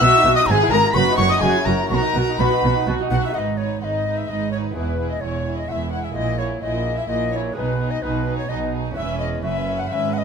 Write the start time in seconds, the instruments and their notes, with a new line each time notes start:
0.00 cello section B2, lute B2 B3 D#4 F#4, viola section F#4, violin section E5 E6, flute E6
0.12 viola section D#4
0.23 double bass section B1, cello section B2, lute B2, viola section F#4
0.35 viola section D#4, violin section D#5 D#6, flute D#6
0.46 double bass section G#1, lute G#2 G#3 B3 E4, cello section G#2, viola section G#4, violin section G#4 G#5, flute A#5
0.51 flute G#5
0.60 viola section E4
0.70 double bass section G#1, cello section G#2, lute G#2, viola section G#4, violin section A#4 A#5, flute A#5
0.83 viola section E4
0.94 double bass section F#1, cello section F#2, lute F#2 B3 D#4 F#4, viola section F#4, violin section B4 B5, flute B5 C#6
1.06 viola section D#4
1.17 double bass section F#1, cello section F#2, lute F#2, viola section F#4, violin section C#5 C#6, flute C#6
1.29 viola section D#4, violin section D#5 D#6, flute D#6
1.41 double bass section F#1, cello section F#2, lute F#2 C#4 E4 F#4, viola section F#4, violin section G#4 G#5, flute G#5
1.54 viola section E4
1.65 double bass section F#1, cello section F#2, lute F#2, viola section F#4, violin section A#4 A#5, flute A#5
1.78 viola section E4
1.89 double bass section B1, cello section B2, lute B2, viola section F#4, violin section A#4 A#5, flute C#6
1.95 flute A#5
2.01 viola section D#4
2.14 double bass section B1, cello section B2, lute B2, viola section F#4
2.25 viola section D#4
2.38 double bass section B1, lute B2 B3 D#4 F#4, cello section B2, viola section F#4, violin section B4 B5, flute B5
2.50 viola section D#4
2.62 double bass section B1, lute B2, cello section B2, viola section F#4
2.75 viola section D#4
2.86 double bass section B1, lute B2 B3 D#4 F#4, cello section B2, viola section F#4
2.99 viola section D#4
3.10 double bass section B1, lute B2, cello section B2, viola section F#4, flute F#5, violin section F#5
3.23 viola section D#4, violin section E5, flute E5
3.29 lute B3 D#4 G#4, violin section B4
3.34 double bass section G#1, lute G#2, cello section G#2, viola section D#4, violin section D#5, flute F#5
3.39 flute D#5
3.57 viola section D#4, violin section B4 C#5, flute C#5
3.81 double bass section G#1, lute G#2, cello section G#2, viola section D#4, violin section B4 D#5, flute D#5 F#5
4.05 viola section D#4, violin section B4
4.17 violin section E5, flute E5
4.28 double bass section G#1, lute G#2, cello section G#2, viola section D#4, violin section B4 D#5, flute D#5
4.51 viola section D#4, violin section B4 C#5, flute C#5
4.71 lute B3 E4 G#4
4.75 double bass section E1, lute E2, cello section E2, viola section E4, violin section G#4 B4, flute B4
4.98 viola section E4, violin section G#4
5.10 violin section D#5, flute D#5
5.21 double bass section E1, lute E2, cello section E2, viola section E4, violin section G#4 C#5, flute C#5
5.45 viola section E4, violin section G#4
5.57 violin section D#5, flute D#5
5.68 double bass section E1, lute E2, cello section E2, viola section E4, violin section G#4 E5, flute F#5
5.72 flute E5
5.91 viola section E4, violin section G#4 F#5, flute F#5
6.04 violin section E5, flute E5
6.11 lute A#3 E4 G#4, flute D#5, violin section D#5
6.15 double bass section A#1, lute A#2, cello section A#2, viola section E4, violin section G#4
6.37 viola section E4, violin section G#4 C#5, flute C#5
6.61 double bass section A#1, cello section A#2, lute A#2, viola section E4, violin section G#4 D#5, flute D#5
6.85 viola section E4, violin section G#4
6.96 violin section E5, flute E5
7.08 double bass section A#1, lute A#2, cello section A#2, viola section E4, violin section G#4 D#5, flute D#5
7.31 viola section E4, violin section G#4 C#5, flute D#5
7.37 flute C#5
7.52 double bass section B1, cello section B2, lute G#3 D#4 G#4, viola section D#4, violin section G#4 B4
7.56 lute B2, flute B4
7.79 viola section D#4, violin section G#4
7.90 violin section D#5, flute D#5
8.02 double bass section B1, cello section B2, lute B2, viola section D#4, violin section G#4 B4, flute B4
8.25 viola section D#4, violin section G#4
8.37 violin section C#5, flute C#5
8.49 double bass section B1, cello section B2, lute B2, viola section D#4, violin section G#4 D#5, flute D#5
8.72 viola section D#4, violin section G#4
8.91 lute C#4 E4 B4
8.95 double bass section E1, lute E2, cello section E2, viola section C#4, violin section B4 E5, flute E5
9.19 flute D#5, violin section D#5
9.42 double bass section F#1, cello section F#2, lute F#2, viola section C#4, violin section B4 E5, flute E5
9.78 flute F#5, violin section F#5
9.89 double bass section G#1, cello section G#2, lute G#2, viola section C#4, violin section B4 E5, flute E5 F#5
10.13 violin section D#5, flute F#5
10.18 flute D#5